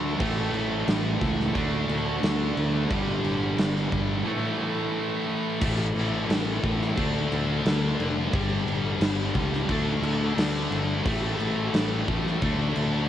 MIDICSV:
0, 0, Header, 1, 5, 480
1, 0, Start_track
1, 0, Tempo, 678733
1, 146, Time_signature, 4, 2, 24, 8
1, 9257, End_track
2, 0, Start_track
2, 0, Title_t, "Distorted electric guitar"
2, 0, Program_c, 0, 30
2, 0, Note_on_c, 0, 50, 94
2, 0, Note_on_c, 0, 57, 98
2, 0, Note_on_c, 0, 62, 117
2, 126, Note_off_c, 0, 50, 0
2, 132, Note_off_c, 0, 57, 0
2, 139, Note_off_c, 0, 62, 0
2, 9257, End_track
3, 0, Start_track
3, 0, Title_t, "Overdriven electric guitar"
3, 0, Program_c, 1, 29
3, 0, Note_on_c, 1, 50, 69
3, 0, Note_on_c, 1, 57, 77
3, 0, Note_on_c, 1, 62, 80
3, 132, Note_off_c, 1, 62, 0
3, 135, Note_off_c, 1, 50, 0
3, 137, Note_off_c, 1, 57, 0
3, 137, Note_on_c, 1, 45, 93
3, 148, Note_on_c, 1, 52, 100
3, 152, Note_on_c, 1, 57, 121
3, 843, Note_off_c, 1, 45, 0
3, 849, Note_off_c, 1, 52, 0
3, 851, Note_off_c, 1, 57, 0
3, 860, Note_on_c, 1, 57, 89
3, 869, Note_on_c, 1, 52, 90
3, 872, Note_on_c, 1, 45, 82
3, 1086, Note_off_c, 1, 57, 0
3, 1090, Note_off_c, 1, 52, 0
3, 1092, Note_off_c, 1, 45, 0
3, 1098, Note_on_c, 1, 50, 89
3, 1109, Note_on_c, 1, 57, 100
3, 1116, Note_on_c, 1, 62, 107
3, 1802, Note_off_c, 1, 50, 0
3, 1808, Note_off_c, 1, 57, 0
3, 1809, Note_off_c, 1, 62, 0
3, 1818, Note_on_c, 1, 62, 82
3, 1824, Note_on_c, 1, 57, 86
3, 1832, Note_on_c, 1, 50, 68
3, 2043, Note_off_c, 1, 62, 0
3, 2045, Note_off_c, 1, 57, 0
3, 2050, Note_off_c, 1, 50, 0
3, 2059, Note_on_c, 1, 43, 85
3, 2066, Note_on_c, 1, 50, 91
3, 2072, Note_on_c, 1, 55, 107
3, 2761, Note_off_c, 1, 43, 0
3, 2765, Note_off_c, 1, 50, 0
3, 2766, Note_off_c, 1, 55, 0
3, 2775, Note_on_c, 1, 55, 81
3, 2784, Note_on_c, 1, 50, 76
3, 2789, Note_on_c, 1, 43, 69
3, 3000, Note_off_c, 1, 55, 0
3, 3004, Note_off_c, 1, 50, 0
3, 3007, Note_off_c, 1, 43, 0
3, 3010, Note_on_c, 1, 45, 94
3, 3019, Note_on_c, 1, 52, 100
3, 3022, Note_on_c, 1, 57, 98
3, 3716, Note_off_c, 1, 45, 0
3, 3721, Note_off_c, 1, 52, 0
3, 3721, Note_off_c, 1, 57, 0
3, 3729, Note_on_c, 1, 57, 82
3, 3738, Note_on_c, 1, 52, 76
3, 3745, Note_on_c, 1, 45, 58
3, 3956, Note_off_c, 1, 57, 0
3, 3961, Note_off_c, 1, 45, 0
3, 3961, Note_off_c, 1, 52, 0
3, 3970, Note_on_c, 1, 45, 85
3, 3977, Note_on_c, 1, 52, 99
3, 3984, Note_on_c, 1, 57, 106
3, 4676, Note_off_c, 1, 45, 0
3, 4680, Note_off_c, 1, 52, 0
3, 4683, Note_off_c, 1, 57, 0
3, 4692, Note_on_c, 1, 57, 93
3, 4701, Note_on_c, 1, 52, 92
3, 4705, Note_on_c, 1, 45, 82
3, 4918, Note_off_c, 1, 57, 0
3, 4922, Note_off_c, 1, 52, 0
3, 4924, Note_off_c, 1, 45, 0
3, 4932, Note_on_c, 1, 50, 98
3, 4941, Note_on_c, 1, 57, 102
3, 4949, Note_on_c, 1, 62, 106
3, 5639, Note_off_c, 1, 50, 0
3, 5643, Note_off_c, 1, 57, 0
3, 5644, Note_off_c, 1, 62, 0
3, 5653, Note_on_c, 1, 62, 92
3, 5661, Note_on_c, 1, 57, 73
3, 5666, Note_on_c, 1, 50, 71
3, 5879, Note_off_c, 1, 62, 0
3, 5883, Note_off_c, 1, 57, 0
3, 5886, Note_off_c, 1, 50, 0
3, 5890, Note_on_c, 1, 43, 105
3, 5899, Note_on_c, 1, 50, 89
3, 5908, Note_on_c, 1, 55, 110
3, 6599, Note_off_c, 1, 43, 0
3, 6604, Note_off_c, 1, 50, 0
3, 6608, Note_off_c, 1, 55, 0
3, 6619, Note_on_c, 1, 55, 101
3, 6626, Note_on_c, 1, 50, 89
3, 6632, Note_on_c, 1, 43, 77
3, 6844, Note_off_c, 1, 55, 0
3, 6847, Note_off_c, 1, 50, 0
3, 6850, Note_off_c, 1, 43, 0
3, 6861, Note_on_c, 1, 50, 106
3, 6868, Note_on_c, 1, 57, 106
3, 6877, Note_on_c, 1, 62, 107
3, 7567, Note_off_c, 1, 50, 0
3, 7571, Note_off_c, 1, 57, 0
3, 7573, Note_off_c, 1, 62, 0
3, 7582, Note_on_c, 1, 62, 85
3, 7589, Note_on_c, 1, 57, 81
3, 7596, Note_on_c, 1, 50, 75
3, 7807, Note_off_c, 1, 62, 0
3, 7811, Note_off_c, 1, 57, 0
3, 7814, Note_off_c, 1, 50, 0
3, 7817, Note_on_c, 1, 45, 107
3, 7826, Note_on_c, 1, 52, 102
3, 7829, Note_on_c, 1, 57, 116
3, 8529, Note_off_c, 1, 45, 0
3, 8533, Note_off_c, 1, 52, 0
3, 8535, Note_off_c, 1, 57, 0
3, 8543, Note_on_c, 1, 57, 92
3, 8551, Note_on_c, 1, 52, 80
3, 8557, Note_on_c, 1, 45, 79
3, 8771, Note_off_c, 1, 57, 0
3, 8775, Note_off_c, 1, 52, 0
3, 8778, Note_off_c, 1, 45, 0
3, 8785, Note_on_c, 1, 50, 100
3, 8795, Note_on_c, 1, 57, 104
3, 8801, Note_on_c, 1, 62, 114
3, 9257, Note_off_c, 1, 50, 0
3, 9257, Note_off_c, 1, 57, 0
3, 9257, Note_off_c, 1, 62, 0
3, 9257, End_track
4, 0, Start_track
4, 0, Title_t, "Fingered electric bass"
4, 0, Program_c, 2, 33
4, 0, Note_on_c, 2, 38, 79
4, 106, Note_off_c, 2, 38, 0
4, 148, Note_on_c, 2, 33, 101
4, 348, Note_off_c, 2, 33, 0
4, 378, Note_on_c, 2, 33, 90
4, 582, Note_off_c, 2, 33, 0
4, 621, Note_on_c, 2, 33, 105
4, 823, Note_off_c, 2, 33, 0
4, 857, Note_on_c, 2, 37, 101
4, 1061, Note_off_c, 2, 37, 0
4, 1098, Note_on_c, 2, 38, 83
4, 1301, Note_off_c, 2, 38, 0
4, 1335, Note_on_c, 2, 38, 106
4, 1538, Note_off_c, 2, 38, 0
4, 1577, Note_on_c, 2, 38, 101
4, 1779, Note_off_c, 2, 38, 0
4, 1816, Note_on_c, 2, 38, 90
4, 2018, Note_off_c, 2, 38, 0
4, 2056, Note_on_c, 2, 31, 92
4, 2258, Note_off_c, 2, 31, 0
4, 2294, Note_on_c, 2, 31, 88
4, 2496, Note_off_c, 2, 31, 0
4, 2533, Note_on_c, 2, 31, 104
4, 2736, Note_off_c, 2, 31, 0
4, 2775, Note_on_c, 2, 31, 96
4, 2977, Note_off_c, 2, 31, 0
4, 3974, Note_on_c, 2, 33, 93
4, 4175, Note_off_c, 2, 33, 0
4, 4212, Note_on_c, 2, 33, 83
4, 4414, Note_off_c, 2, 33, 0
4, 4453, Note_on_c, 2, 33, 100
4, 4655, Note_off_c, 2, 33, 0
4, 4692, Note_on_c, 2, 33, 97
4, 4895, Note_off_c, 2, 33, 0
4, 4934, Note_on_c, 2, 38, 93
4, 5136, Note_off_c, 2, 38, 0
4, 5174, Note_on_c, 2, 38, 100
4, 5376, Note_off_c, 2, 38, 0
4, 5412, Note_on_c, 2, 38, 98
4, 5615, Note_off_c, 2, 38, 0
4, 5653, Note_on_c, 2, 29, 79
4, 5856, Note_off_c, 2, 29, 0
4, 5892, Note_on_c, 2, 31, 101
4, 6096, Note_off_c, 2, 31, 0
4, 6128, Note_on_c, 2, 31, 87
4, 6334, Note_off_c, 2, 31, 0
4, 6369, Note_on_c, 2, 31, 105
4, 6575, Note_off_c, 2, 31, 0
4, 6614, Note_on_c, 2, 37, 102
4, 6818, Note_off_c, 2, 37, 0
4, 6857, Note_on_c, 2, 38, 88
4, 7060, Note_off_c, 2, 38, 0
4, 7089, Note_on_c, 2, 38, 107
4, 7296, Note_off_c, 2, 38, 0
4, 7335, Note_on_c, 2, 38, 103
4, 7540, Note_off_c, 2, 38, 0
4, 7573, Note_on_c, 2, 31, 99
4, 7779, Note_off_c, 2, 31, 0
4, 7821, Note_on_c, 2, 33, 98
4, 8024, Note_off_c, 2, 33, 0
4, 8060, Note_on_c, 2, 33, 90
4, 8265, Note_off_c, 2, 33, 0
4, 8301, Note_on_c, 2, 33, 106
4, 8506, Note_off_c, 2, 33, 0
4, 8543, Note_on_c, 2, 33, 94
4, 8748, Note_off_c, 2, 33, 0
4, 8783, Note_on_c, 2, 38, 95
4, 8989, Note_off_c, 2, 38, 0
4, 9028, Note_on_c, 2, 38, 105
4, 9232, Note_off_c, 2, 38, 0
4, 9257, End_track
5, 0, Start_track
5, 0, Title_t, "Drums"
5, 145, Note_on_c, 9, 36, 119
5, 145, Note_on_c, 9, 49, 94
5, 215, Note_off_c, 9, 36, 0
5, 216, Note_off_c, 9, 49, 0
5, 382, Note_on_c, 9, 49, 63
5, 453, Note_off_c, 9, 49, 0
5, 620, Note_on_c, 9, 49, 91
5, 627, Note_on_c, 9, 38, 119
5, 690, Note_off_c, 9, 49, 0
5, 698, Note_off_c, 9, 38, 0
5, 857, Note_on_c, 9, 36, 82
5, 857, Note_on_c, 9, 49, 65
5, 927, Note_off_c, 9, 49, 0
5, 928, Note_off_c, 9, 36, 0
5, 986, Note_on_c, 9, 38, 37
5, 1057, Note_off_c, 9, 38, 0
5, 1097, Note_on_c, 9, 36, 83
5, 1098, Note_on_c, 9, 49, 74
5, 1167, Note_off_c, 9, 36, 0
5, 1169, Note_off_c, 9, 49, 0
5, 1337, Note_on_c, 9, 49, 62
5, 1408, Note_off_c, 9, 49, 0
5, 1576, Note_on_c, 9, 49, 89
5, 1584, Note_on_c, 9, 38, 122
5, 1647, Note_off_c, 9, 49, 0
5, 1655, Note_off_c, 9, 38, 0
5, 1817, Note_on_c, 9, 49, 62
5, 1888, Note_off_c, 9, 49, 0
5, 2055, Note_on_c, 9, 36, 109
5, 2055, Note_on_c, 9, 49, 80
5, 2125, Note_off_c, 9, 36, 0
5, 2125, Note_off_c, 9, 49, 0
5, 2293, Note_on_c, 9, 49, 57
5, 2363, Note_off_c, 9, 49, 0
5, 2533, Note_on_c, 9, 49, 90
5, 2541, Note_on_c, 9, 38, 119
5, 2604, Note_off_c, 9, 49, 0
5, 2611, Note_off_c, 9, 38, 0
5, 2661, Note_on_c, 9, 38, 33
5, 2731, Note_off_c, 9, 38, 0
5, 2774, Note_on_c, 9, 36, 83
5, 2774, Note_on_c, 9, 49, 57
5, 2844, Note_off_c, 9, 36, 0
5, 2844, Note_off_c, 9, 49, 0
5, 3970, Note_on_c, 9, 49, 100
5, 3970, Note_on_c, 9, 57, 127
5, 3973, Note_on_c, 9, 36, 124
5, 4040, Note_off_c, 9, 49, 0
5, 4040, Note_off_c, 9, 57, 0
5, 4044, Note_off_c, 9, 36, 0
5, 4216, Note_on_c, 9, 49, 64
5, 4287, Note_off_c, 9, 49, 0
5, 4454, Note_on_c, 9, 49, 102
5, 4462, Note_on_c, 9, 38, 124
5, 4525, Note_off_c, 9, 49, 0
5, 4533, Note_off_c, 9, 38, 0
5, 4691, Note_on_c, 9, 49, 66
5, 4692, Note_on_c, 9, 36, 86
5, 4762, Note_off_c, 9, 49, 0
5, 4763, Note_off_c, 9, 36, 0
5, 4819, Note_on_c, 9, 38, 38
5, 4889, Note_off_c, 9, 38, 0
5, 4931, Note_on_c, 9, 49, 85
5, 4932, Note_on_c, 9, 36, 79
5, 5002, Note_off_c, 9, 49, 0
5, 5003, Note_off_c, 9, 36, 0
5, 5174, Note_on_c, 9, 49, 60
5, 5244, Note_off_c, 9, 49, 0
5, 5412, Note_on_c, 9, 49, 87
5, 5419, Note_on_c, 9, 38, 122
5, 5482, Note_off_c, 9, 49, 0
5, 5490, Note_off_c, 9, 38, 0
5, 5655, Note_on_c, 9, 49, 63
5, 5726, Note_off_c, 9, 49, 0
5, 5893, Note_on_c, 9, 49, 91
5, 5894, Note_on_c, 9, 36, 127
5, 5964, Note_off_c, 9, 49, 0
5, 5965, Note_off_c, 9, 36, 0
5, 6138, Note_on_c, 9, 49, 61
5, 6209, Note_off_c, 9, 49, 0
5, 6373, Note_on_c, 9, 49, 105
5, 6381, Note_on_c, 9, 38, 122
5, 6444, Note_off_c, 9, 49, 0
5, 6451, Note_off_c, 9, 38, 0
5, 6615, Note_on_c, 9, 36, 81
5, 6615, Note_on_c, 9, 49, 69
5, 6686, Note_off_c, 9, 36, 0
5, 6686, Note_off_c, 9, 49, 0
5, 6742, Note_on_c, 9, 38, 38
5, 6812, Note_off_c, 9, 38, 0
5, 6855, Note_on_c, 9, 36, 81
5, 6856, Note_on_c, 9, 49, 83
5, 6925, Note_off_c, 9, 36, 0
5, 6927, Note_off_c, 9, 49, 0
5, 7096, Note_on_c, 9, 49, 77
5, 7167, Note_off_c, 9, 49, 0
5, 7341, Note_on_c, 9, 49, 105
5, 7348, Note_on_c, 9, 38, 127
5, 7411, Note_off_c, 9, 49, 0
5, 7419, Note_off_c, 9, 38, 0
5, 7581, Note_on_c, 9, 49, 67
5, 7651, Note_off_c, 9, 49, 0
5, 7820, Note_on_c, 9, 36, 125
5, 7821, Note_on_c, 9, 49, 105
5, 7891, Note_off_c, 9, 36, 0
5, 7892, Note_off_c, 9, 49, 0
5, 8062, Note_on_c, 9, 49, 68
5, 8133, Note_off_c, 9, 49, 0
5, 8300, Note_on_c, 9, 49, 92
5, 8308, Note_on_c, 9, 38, 127
5, 8371, Note_off_c, 9, 49, 0
5, 8378, Note_off_c, 9, 38, 0
5, 8542, Note_on_c, 9, 49, 67
5, 8543, Note_on_c, 9, 36, 86
5, 8613, Note_off_c, 9, 36, 0
5, 8613, Note_off_c, 9, 49, 0
5, 8674, Note_on_c, 9, 38, 36
5, 8745, Note_off_c, 9, 38, 0
5, 8780, Note_on_c, 9, 49, 77
5, 8783, Note_on_c, 9, 36, 76
5, 8851, Note_off_c, 9, 49, 0
5, 8854, Note_off_c, 9, 36, 0
5, 9021, Note_on_c, 9, 49, 70
5, 9091, Note_off_c, 9, 49, 0
5, 9257, End_track
0, 0, End_of_file